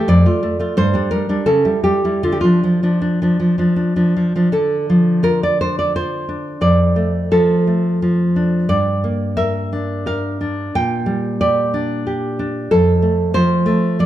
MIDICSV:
0, 0, Header, 1, 2, 480
1, 0, Start_track
1, 0, Key_signature, -1, "minor"
1, 0, Tempo, 688863
1, 61, Time_signature, 3, 2, 24, 8
1, 1024, Tempo, 781250
1, 1984, Tempo, 752823
1, 2944, Tempo, 712589
1, 3424, Tempo, 684151
1, 7264, Tempo, 654308
1, 9710, End_track
2, 0, Start_track
2, 0, Title_t, "Nylon-string guitar"
2, 0, Program_c, 0, 24
2, 55, Note_on_c, 0, 41, 71
2, 60, Note_on_c, 0, 74, 102
2, 170, Note_off_c, 0, 41, 0
2, 178, Note_on_c, 0, 57, 56
2, 182, Note_on_c, 0, 65, 57
2, 289, Note_off_c, 0, 57, 0
2, 297, Note_on_c, 0, 57, 61
2, 407, Note_off_c, 0, 57, 0
2, 409, Note_off_c, 0, 65, 0
2, 414, Note_on_c, 0, 57, 54
2, 420, Note_on_c, 0, 65, 59
2, 509, Note_off_c, 0, 74, 0
2, 520, Note_off_c, 0, 57, 0
2, 521, Note_off_c, 0, 65, 0
2, 535, Note_on_c, 0, 43, 78
2, 540, Note_on_c, 0, 72, 105
2, 649, Note_off_c, 0, 43, 0
2, 652, Note_on_c, 0, 55, 56
2, 660, Note_on_c, 0, 62, 62
2, 768, Note_off_c, 0, 72, 0
2, 772, Note_off_c, 0, 55, 0
2, 772, Note_on_c, 0, 70, 84
2, 780, Note_on_c, 0, 55, 56
2, 892, Note_off_c, 0, 55, 0
2, 892, Note_off_c, 0, 62, 0
2, 899, Note_on_c, 0, 55, 49
2, 902, Note_on_c, 0, 62, 56
2, 1013, Note_off_c, 0, 55, 0
2, 1013, Note_off_c, 0, 62, 0
2, 1014, Note_off_c, 0, 70, 0
2, 1017, Note_on_c, 0, 69, 80
2, 1021, Note_on_c, 0, 49, 68
2, 1133, Note_off_c, 0, 49, 0
2, 1134, Note_on_c, 0, 64, 51
2, 1135, Note_on_c, 0, 55, 52
2, 1242, Note_off_c, 0, 55, 0
2, 1242, Note_off_c, 0, 69, 0
2, 1249, Note_on_c, 0, 55, 52
2, 1249, Note_on_c, 0, 67, 76
2, 1370, Note_off_c, 0, 55, 0
2, 1373, Note_off_c, 0, 64, 0
2, 1378, Note_on_c, 0, 55, 50
2, 1380, Note_on_c, 0, 64, 54
2, 1483, Note_off_c, 0, 67, 0
2, 1486, Note_off_c, 0, 55, 0
2, 1487, Note_off_c, 0, 64, 0
2, 1492, Note_on_c, 0, 50, 63
2, 1494, Note_on_c, 0, 65, 70
2, 1545, Note_off_c, 0, 65, 0
2, 1549, Note_on_c, 0, 67, 64
2, 1598, Note_off_c, 0, 67, 0
2, 1601, Note_on_c, 0, 65, 81
2, 1615, Note_off_c, 0, 50, 0
2, 1619, Note_on_c, 0, 53, 48
2, 1625, Note_on_c, 0, 62, 53
2, 1733, Note_off_c, 0, 53, 0
2, 1740, Note_on_c, 0, 53, 52
2, 1851, Note_off_c, 0, 53, 0
2, 1855, Note_off_c, 0, 62, 0
2, 1859, Note_on_c, 0, 53, 43
2, 1862, Note_on_c, 0, 62, 53
2, 1966, Note_off_c, 0, 62, 0
2, 1974, Note_on_c, 0, 62, 54
2, 2095, Note_off_c, 0, 53, 0
2, 2100, Note_off_c, 0, 62, 0
2, 2102, Note_on_c, 0, 53, 50
2, 2108, Note_on_c, 0, 62, 54
2, 2208, Note_off_c, 0, 53, 0
2, 2216, Note_on_c, 0, 53, 45
2, 2326, Note_off_c, 0, 53, 0
2, 2332, Note_off_c, 0, 62, 0
2, 2333, Note_on_c, 0, 53, 41
2, 2339, Note_on_c, 0, 62, 48
2, 2438, Note_off_c, 0, 65, 0
2, 2442, Note_off_c, 0, 62, 0
2, 2450, Note_on_c, 0, 62, 50
2, 2569, Note_off_c, 0, 53, 0
2, 2570, Note_off_c, 0, 62, 0
2, 2576, Note_on_c, 0, 53, 46
2, 2578, Note_on_c, 0, 62, 54
2, 2698, Note_off_c, 0, 53, 0
2, 2706, Note_on_c, 0, 53, 49
2, 2820, Note_off_c, 0, 53, 0
2, 2824, Note_off_c, 0, 62, 0
2, 2827, Note_on_c, 0, 53, 46
2, 2832, Note_on_c, 0, 62, 54
2, 2931, Note_off_c, 0, 53, 0
2, 2933, Note_on_c, 0, 50, 58
2, 2934, Note_off_c, 0, 62, 0
2, 2937, Note_on_c, 0, 69, 69
2, 3185, Note_on_c, 0, 53, 48
2, 3400, Note_off_c, 0, 69, 0
2, 3409, Note_on_c, 0, 65, 54
2, 3414, Note_on_c, 0, 70, 83
2, 3541, Note_off_c, 0, 70, 0
2, 3552, Note_on_c, 0, 74, 79
2, 3672, Note_off_c, 0, 74, 0
2, 3675, Note_on_c, 0, 62, 45
2, 3675, Note_on_c, 0, 72, 79
2, 3792, Note_off_c, 0, 72, 0
2, 3800, Note_on_c, 0, 74, 69
2, 3908, Note_off_c, 0, 53, 0
2, 3912, Note_off_c, 0, 65, 0
2, 3913, Note_off_c, 0, 74, 0
2, 3920, Note_on_c, 0, 65, 49
2, 3921, Note_on_c, 0, 72, 76
2, 4142, Note_off_c, 0, 62, 0
2, 4151, Note_on_c, 0, 62, 44
2, 4341, Note_off_c, 0, 50, 0
2, 4363, Note_off_c, 0, 72, 0
2, 4378, Note_on_c, 0, 41, 54
2, 4380, Note_off_c, 0, 62, 0
2, 4382, Note_off_c, 0, 65, 0
2, 4382, Note_on_c, 0, 74, 78
2, 4623, Note_on_c, 0, 57, 49
2, 4845, Note_off_c, 0, 74, 0
2, 4872, Note_on_c, 0, 53, 56
2, 4874, Note_on_c, 0, 69, 74
2, 5115, Note_off_c, 0, 57, 0
2, 5123, Note_on_c, 0, 57, 42
2, 5361, Note_off_c, 0, 53, 0
2, 5369, Note_on_c, 0, 53, 47
2, 5570, Note_off_c, 0, 69, 0
2, 5607, Note_on_c, 0, 62, 45
2, 5805, Note_off_c, 0, 41, 0
2, 5836, Note_on_c, 0, 43, 57
2, 5838, Note_off_c, 0, 62, 0
2, 5838, Note_on_c, 0, 74, 81
2, 5839, Note_off_c, 0, 57, 0
2, 5840, Note_off_c, 0, 53, 0
2, 6081, Note_on_c, 0, 58, 49
2, 6287, Note_off_c, 0, 74, 0
2, 6312, Note_on_c, 0, 70, 58
2, 6313, Note_on_c, 0, 76, 86
2, 6564, Note_on_c, 0, 62, 45
2, 6775, Note_off_c, 0, 76, 0
2, 6790, Note_off_c, 0, 70, 0
2, 6797, Note_off_c, 0, 58, 0
2, 6799, Note_on_c, 0, 70, 50
2, 6804, Note_on_c, 0, 77, 76
2, 7033, Note_off_c, 0, 62, 0
2, 7042, Note_on_c, 0, 62, 45
2, 7241, Note_off_c, 0, 43, 0
2, 7254, Note_off_c, 0, 77, 0
2, 7271, Note_off_c, 0, 70, 0
2, 7272, Note_off_c, 0, 62, 0
2, 7284, Note_on_c, 0, 46, 65
2, 7285, Note_on_c, 0, 79, 89
2, 7511, Note_on_c, 0, 55, 51
2, 7744, Note_off_c, 0, 79, 0
2, 7765, Note_on_c, 0, 67, 59
2, 7766, Note_on_c, 0, 74, 84
2, 8007, Note_on_c, 0, 62, 49
2, 8240, Note_off_c, 0, 67, 0
2, 8242, Note_off_c, 0, 55, 0
2, 8249, Note_on_c, 0, 67, 55
2, 8456, Note_off_c, 0, 74, 0
2, 8479, Note_off_c, 0, 62, 0
2, 8488, Note_on_c, 0, 62, 53
2, 8696, Note_off_c, 0, 46, 0
2, 8720, Note_off_c, 0, 62, 0
2, 8720, Note_off_c, 0, 67, 0
2, 8722, Note_on_c, 0, 69, 87
2, 8723, Note_on_c, 0, 41, 58
2, 8951, Note_on_c, 0, 57, 53
2, 9171, Note_off_c, 0, 69, 0
2, 9182, Note_on_c, 0, 53, 60
2, 9185, Note_on_c, 0, 72, 105
2, 9408, Note_off_c, 0, 57, 0
2, 9417, Note_on_c, 0, 57, 55
2, 9645, Note_off_c, 0, 72, 0
2, 9653, Note_off_c, 0, 53, 0
2, 9662, Note_on_c, 0, 53, 53
2, 9667, Note_on_c, 0, 74, 76
2, 9710, Note_off_c, 0, 41, 0
2, 9710, Note_off_c, 0, 53, 0
2, 9710, Note_off_c, 0, 57, 0
2, 9710, Note_off_c, 0, 74, 0
2, 9710, End_track
0, 0, End_of_file